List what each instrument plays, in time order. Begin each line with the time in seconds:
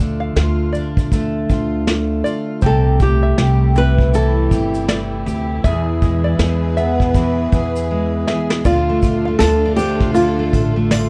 Already playing: upright bass D2, twelve-string acoustic guitar D3 F4
0.00 twelve-string acoustic guitar A3
0.20 five-string banjo F5
0.36 upright bass D2, twelve-string acoustic guitar F4, snare, shaker
0.73 twelve-string acoustic guitar D4, five-string banjo D5, shaker
0.97 kick, shaker
1.12 twelve-string acoustic guitar A3, kick, shaker
1.49 upright bass D2, twelve-string acoustic guitar F4, kick, shaker
1.87 twelve-string acoustic guitar A3, snare, shaker
2.24 twelve-string acoustic guitar F4, five-string banjo D5, shaker
2.62 upright bass C2, twelve-string acoustic guitar C3 G4, string section C3 G3 A3 E4, five-string banjo C5, kick, shaker
2.66 nylon-string guitar A4
3.00 twelve-string acoustic guitar A3, nylon-string guitar G4, kick, shaker
3.23 five-string banjo E5
3.38 upright bass C2, twelve-string acoustic guitar G4, snare, shaker
3.76 five-string banjo C4, twelve-string acoustic guitar E4, nylon-string guitar B4, shaker
3.98 kick
4.13 twelve-string acoustic guitar E3, nylon-string guitar A4, shaker
4.51 upright bass G1, twelve-string acoustic guitar G4, kick, shaker
4.74 shaker
4.88 twelve-string acoustic guitar A3, five-string banjo D5, snare, shaker
5.26 upright bass D2, twelve-string acoustic guitar G4, shaker
5.64 upright bass E2, twelve-string acoustic guitar E2 G#4, string section E3 G#4 B4, five-string banjo E5, kick, shaker
6.02 twelve-string acoustic guitar G#3, kick, shaker
6.24 five-string banjo D5
6.39 upright bass E2, twelve-string acoustic guitar G#4, snare, shaker
6.77 twelve-string acoustic guitar B3, five-string banjo E5, shaker
7.00 kick, snare
7.14 twelve-string acoustic guitar E3, kick, shaker
7.52 upright bass E2, twelve-string acoustic guitar G#4, kick, shaker
7.76 shaker
7.91 twelve-string acoustic guitar G#3
8.27 twelve-string acoustic guitar G#4, five-string banjo E5, snare
8.50 snare
8.64 upright bass D2, string section D3 D4 F4 A4, twelve-string acoustic guitar D3 F4, nylon-string guitar F4, five-string banjo D5, kick, tambourine, shaker
8.89 twelve-string acoustic guitar A3
9.02 twelve-string acoustic guitar F4, kick, tambourine, shaker
9.25 twelve-string acoustic guitar A3, five-string banjo F5
9.39 upright bass D2, twelve-string acoustic guitar F4, nylon-string guitar A4, snare, tambourine, shaker
9.66 twelve-string acoustic guitar D4
9.76 twelve-string acoustic guitar A3, nylon-string guitar G4, five-string banjo C5, tambourine, shaker
10.00 twelve-string acoustic guitar F4, kick, snare
10.14 twelve-string acoustic guitar D3 F4, nylon-string guitar F4, tambourine, shaker
10.39 twelve-string acoustic guitar A3
10.53 upright bass A1, twelve-string acoustic guitar F4, kick, tambourine, shaker
10.76 twelve-string acoustic guitar A3
10.91 twelve-string acoustic guitar F4, five-string banjo D5, snare, tambourine, shaker